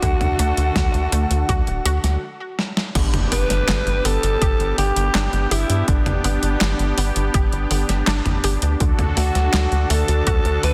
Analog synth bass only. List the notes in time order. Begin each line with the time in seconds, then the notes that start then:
0.02 D2
0.21 D2
0.39 D2
0.57 D2
0.76 D2
0.94 D2
1.12 D2
1.31 D2
1.49 D2
1.67 D1
1.85 D2
2.04 D2
2.95 G1
3.13 G1
3.32 G1
3.50 G1
3.68 G1
3.87 G1
4.05 G1
4.23 G1
4.42 G1
4.60 G1
4.78 G1
4.96 G1
5.15 G1
5.33 G1
5.51 G1
5.70 G2
5.88 G1
6.06 G1
6.24 G1
6.43 G1
6.61 G1
6.79 G1
6.98 G1
7.16 G1
7.34 G1
7.53 G1
7.71 G1
7.89 G1
8.07 G1
8.26 G1
8.44 G1
8.62 D2
8.80 D2
8.99 D2
9.17 D2
9.35 D2
9.54 D2
9.72 D2
9.90 D2
10.08 D2
10.27 D2
10.45 D2
10.63 D2